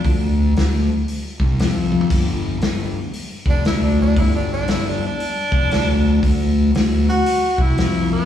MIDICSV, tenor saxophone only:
0, 0, Header, 1, 2, 480
1, 0, Start_track
1, 0, Tempo, 515021
1, 51, Time_signature, 4, 2, 24, 8
1, 7690, End_track
2, 0, Start_track
2, 0, Title_t, "Tenor saxophone"
2, 0, Program_c, 0, 66
2, 0, Note_on_c, 0, 62, 105
2, 336, Note_off_c, 0, 62, 0
2, 3257, Note_on_c, 0, 62, 94
2, 3409, Note_off_c, 0, 62, 0
2, 3416, Note_on_c, 0, 64, 86
2, 3569, Note_on_c, 0, 62, 82
2, 3583, Note_off_c, 0, 64, 0
2, 3725, Note_off_c, 0, 62, 0
2, 3743, Note_on_c, 0, 62, 96
2, 3901, Note_on_c, 0, 64, 89
2, 3915, Note_off_c, 0, 62, 0
2, 4051, Note_off_c, 0, 64, 0
2, 4058, Note_on_c, 0, 62, 81
2, 4210, Note_off_c, 0, 62, 0
2, 4223, Note_on_c, 0, 62, 101
2, 4379, Note_on_c, 0, 64, 89
2, 4393, Note_off_c, 0, 62, 0
2, 4544, Note_on_c, 0, 62, 87
2, 4558, Note_off_c, 0, 64, 0
2, 4693, Note_off_c, 0, 62, 0
2, 4716, Note_on_c, 0, 62, 107
2, 6105, Note_off_c, 0, 62, 0
2, 6612, Note_on_c, 0, 66, 111
2, 7090, Note_on_c, 0, 64, 96
2, 7104, Note_off_c, 0, 66, 0
2, 7556, Note_off_c, 0, 64, 0
2, 7569, Note_on_c, 0, 59, 103
2, 7690, Note_off_c, 0, 59, 0
2, 7690, End_track
0, 0, End_of_file